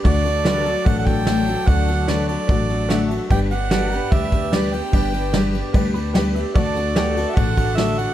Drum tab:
RD |xxxxxxxx|xxxxxxxx|xxxxxxxx|xxxxxxxx|
SD |--o---o-|--o---o-|--o---o-|--o---o-|
BD |o---oo--|o---o---|o---oo--|o---o---|

RD |xxxxxxxx|
SD |--o---o-|
BD |o---oo--|